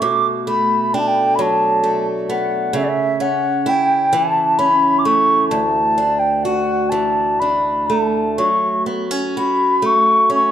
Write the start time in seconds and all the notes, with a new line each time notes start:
Already playing: E3 A3 C#4 E4
0.01 B2 D6
0.47 A3 B5
0.94 D4 G5
0.99 A5
1.07 G5
1.35 F#3 B5
1.41 A5
1.83 A3
2.29 B3 F#5
2.73 C#3 E5
2.84 D5
2.88 E5
3.20 C#4 F#5
3.66 E4 G5
4.13 E3 A5
4.58 C#4 B5
4.98 D6
5.05 A3 C#6
5.49 D2 A5
5.98 D4
6.19 G5
6.43 F#4 F#5
6.89 E3 A5
7.39 D4 B5
7.87 A3 A5
8.37 F#3 C#6
8.86 B3
9.11 C#4
9.37 F#4 B5
9.82 A3 C#6
10.30 C#4
10.34 C#6